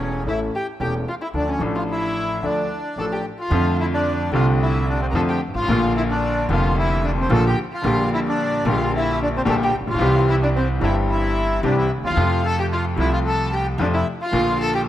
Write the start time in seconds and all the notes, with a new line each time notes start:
Already playing: E1 E2 E3 A3 C#4 A4 C#5
0.25 A1 A2 E3 A3 C#4 E4 A4 E5
0.55 G4 G5
0.80 E1 E2 E3 A3 C#4 G4 A4 G5
1.08 F4 F5
1.21 E4 E5
1.33 D2 D3 F3 A3 D4 A4
1.38 D4 D5
1.48 C#4 C#5
1.59 A1 A2 F3 A3 D4 A4
1.75 F4 F5
1.89 E4 E5
2.42 D2 D3 F3 A3 D4 A4 D5
2.96 A1 A2 F3 A3 D4 A4
3.00 A5
3.12 G4 G5
3.39 F4 F5
3.50 F2 D3 F3 A3 C4 F4
3.80 E4 E5
3.94 D4 D5
4.31 C2 C3 D3 A3 C4 F4 F5
4.35 F4
4.61 E4 E5
4.89 D4 D5
5.02 C4 C5
5.11 F2 A4 A#4 A#5
5.15 F2 D3 F3 A3 C4 F4 A4 A5
5.29 G4 G5
5.47 G1
5.54 G#1 F4 F5
5.61 A1
5.67 A#1 A#2 D3 F3 A#3
5.71 F4
5.96 E4 E5
6.10 D4 D5
6.49 F1 F2 D3 F3 A#3 F4
6.54 F5
6.77 E4 E5
7.04 D4 D5
7.18 C4 C5
7.30 A#1 A#2 D3 F3 A#3 F4 A4
7.34 A5
7.47 G4 G5
7.74 F4 F5
7.82 A#1 A#2 D3 G3 A#3
7.86 G4
8.14 E4 E5
8.27 D4 D5
8.64 A#1 A#2 D3 G3 A#3
8.68 F4 G4 F5
8.95 E4 E5
9.22 D4 D5
9.36 C4 C5
9.45 A#1 A#2 D3 G3 A#3 G4 A4
9.49 A4 A5
9.63 G4 G5
9.80 A1
9.87 A#1 F4 F5
9.92 B1
9.97 C2 C3 E3 G3 C4 G4
10.29 E4 E5
10.42 D4 D5
10.55 C4 C5
10.79 G1 G2 E3 G3 C4 E4
10.84 E4 G4 E5
11.10 E4 E5
11.63 C2 C3 E3 G3 C4 D4 G4 D5
11.77 E4 E5
11.97 D2
12.04 D#2 F4 F5
12.10 E2
12.15 F2 C3 F3 A3 F4
12.45 A4 A5
12.60 G4 G5
12.72 F4 F5
12.96 C2 C3 F3 A3 E4 F4
13.01 E5
13.12 F4 F5
13.26 A4 A5
13.53 G4 G5
13.78 F2 C3 F3 A3 D4 F4
13.82 D5
13.94 E4 E5
14.21 F4 F5
14.31 A#1 A#2 D3 F3 A#3
14.35 F4
14.61 A4 A5
14.75 G4 G5